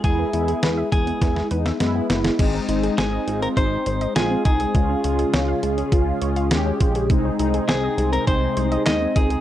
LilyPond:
<<
  \new Staff \with { instrumentName = "Clean electric guitar" } { \time 4/4 \key aes \major \tempo 4 = 102 gis'4. gis'4 r4. | r4 aes'8. bes'16 c''4 aes'8 aes'8~ | aes'2~ aes'8 r4. | r4 aes'8. bes'16 c''4 ees''8 aes'8 | }
  \new Staff \with { instrumentName = "Synth pluck" } { \time 4/4 \key aes \major gis16 b16 e'16 gis'16 b'16 e''16 gis16 b16 e'16 r16 b'16 e''16 gis16 b16 e'16 gis'16 | aes16 c'16 ees'16 aes'16 c''16 ees''16 aes16 c'16 ees'16 r16 c''16 ees''16 aes16 c'16 ees'16 aes'16 | aes16 des'16 f'16 aes'16 des''16 f''16 aes16 des'16 f'16 r16 des''16 f''16 aes16 des'16 f'16 aes'16 | aes16 c'16 ees'16 aes'16 c''16 ees''16 aes16 c'16 ees'16 r16 c''16 ees''16 aes16 c'16 ees'16 aes'16 | }
  \new Staff \with { instrumentName = "Analog synth pad" } { \time 4/4 \key aes \major << { r1 | ees'1 | aes'1~ | aes'1 | } \\ { r1 | <aes c'>1 | <des des' f'>1 | <c c' ees'>1 | } >> }
  \new Staff \with { instrumentName = "Analog polysynth" } { \time 4/4 \key aes \major <gis b e'>8 <gis b e'>8 <gis b e'>8 <gis b e'>8 <gis b e'>8 <gis b ees'>8 <gis b e'>8 <gis b e'>8 | <aes c' ees'>8 <aes c' ees'>8 <aes c' ees'>8 <aes c' f'>8 <aes c' ees'>8 <aes c' ees'>8 <aes c' f'>8 <aes c' ees'>8 | <aes des' f'>8 <aes des' f'>8 <aes des' f'>8 <aes des' aes'>8 <aes des' f'>8 <aes des' f'>8 <aes des' g'>8 <aes des' g'>8 | <aes c' ees'>8 <aes c' ees'>8 <aes c' ees'>8 <aes c' ees'>8 <aes c' ees'>8 <aes c' ees'>8 <aes c' ees'>8 <aes c' ees'>8 | }
  \new Staff \with { instrumentName = "Analog synth bass" } { \clef bass \time 4/4 \key aes \major e,8 e,8 e,8 e,8 e,8 e,8 ges,8 ges,,8 | aes,,8 aes,,8 aes,,8 aes,,8 aes,,8 aes,,8 bes,,8 c,8 | des,8 des,8 des,8 des,8 des,8 des,8 ees,8 bes,,8 | c,8 c,8 c,8 c,8 c,8 c,8 ees,8 des,8 | }
  \new DrumStaff \with { instrumentName = "Drums" } \drummode { \time 4/4 <hh bd>8 hh16 hh16 <hh sn>8 <hh bd>16 hh16 <hh bd sn>16 sn16 hh16 <hh sn>16 <hh sn>8 <hh sn>16 <hh sn>16 | <cymc hh bd>8 hh16 hh16 <hh sn>8 hh16 hh16 <hh bd>8 hh16 hh16 <hh sn>8 <hh bd>16 hh16 | <hh bd>8 hh16 hh16 <hh sn>8 hh16 hh16 <hh bd>8 hh16 hh16 <hh sn>8 <hh bd>16 hh16 | <hh bd>8 hh16 hh16 <hh sn>8 hh16 hh16 <hh bd>8 hh16 hh16 <hc hh sn>8 <hh bd>16 hh16 | }
>>